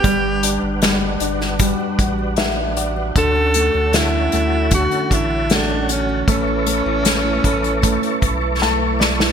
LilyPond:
<<
  \new Staff \with { instrumentName = "Tonewheel organ" } { \time 4/4 \key d \major \tempo 4 = 77 << { b'1 | cis''1 | <b' e'' cis'''>1 | } \\ { <d'' fis''>1 | a''1~ | a''1 | } >> }
  \new Staff \with { instrumentName = "Alto saxophone" } { \time 4/4 \key d \major g'4 r2. | a'4 e'4 fis'8 e'8 d'8 cis'8 | cis'2. r4 | }
  \new Staff \with { instrumentName = "Steel-string acoustic guitar" } { \time 4/4 \key d \major g16 d'8 d'16 fis'16 d'16 fis'16 d'16 <g fis'>16 d'16 fis'16 d'16 fis'16 d'16 fis'16 d'16 | <d fis'>16 cis'16 fis'16 cis'16 fis'16 cis'16 fis'16 cis'16 <d fis'>16 cis'16 fis'16 cis'16 fis'16 cis'16 fis'16 cis'16 | <a b'>16 e'16 b'16 e'16 b'16 e'16 b'16 e'16 <a b'>16 e'16 b'16 e'16 b'16 e'16 b'16 e'16 | }
  \new Staff \with { instrumentName = "Grand piano" } { \time 4/4 \key d \major r2. e''8 d''8 | r1 | r2. a''8 d''8 | }
  \new Staff \with { instrumentName = "Grand piano" } { \time 4/4 \key d \major g8 d'8 g8 d'8 g4 d'4 | d8 a8 d8 a8 d4 a4 | a8 a8 a8 a8 a4 a4 | }
  \new Staff \with { instrumentName = "Sub bass" } { \clef bass \time 4/4 \key d \major g,,8. g,,8. g,,8. r16 a,,4. | d,8. d,8. d,8. r16 a,,4. | a,,8. a,,8. a,,8. r16 b,,4. | }
  \new DrumStaff \with { instrumentName = "Drums" } \drummode { \time 4/4 <hh bd>8 hh8 <hh sn>8 hh16 sn16 <hh bd>8 <hh bd>8 <hh sn>8 hh8 | <hh bd>8 hh8 <hh sn>8 hh8 <hh bd>16 hh16 <hh bd>8 <hh sn>8 hh8 | <hh bd>8 hh8 <hh sn>8 <hh bd>16 hh16 <hh bd>16 hh16 <hh bd>8 sn8 sn16 sn16 | }
>>